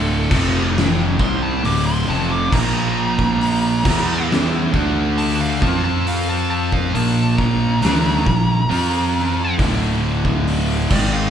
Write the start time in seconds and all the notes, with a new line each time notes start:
Already playing: D1 D2 A2 D3 A4
0.31 F1 F2 C3 F3, kick, crash
0.78 snare
1.19 C2 C3 G3 C4 C6, kick
1.42 A5
1.63 D1 D2 A2 D3 D6, open hi-hat
1.87 C6
2.07 F1 F2 C3 F3 A5
2.11 snare
2.32 D6
2.51 A#1 A#2 F3 A#3 A#5, kick, crash
3.19 kick
3.41 open hi-hat
3.84 E2 E3 B3 E4, kick, crash
4.32 snare
4.73 D2 D3 A3 D4, kick
5.18 A5, open hi-hat
5.41 F5
5.62 F2 F3 C4 F4 A5, kick, snare
5.85 A5
6.07 F5, open hi-hat
6.29 A5
6.51 A5
6.72 F5, kick
6.93 A#1 A#2 F3 A#3 A5, open hi-hat
7.38 A#5, kick
7.82 D2 D3 A3 D4, snare, open hi-hat
8.26 A#1 A#2 F3, kick
8.69 F2 F3 C4 F4, open hi-hat
9.18 snare
9.58 D1 D2 A2 D3, kick, open hi-hat
10.25 kick
10.48 open hi-hat
10.90 G#1 G#2 D#3 G#3 D5, kick, crash
11.13 F5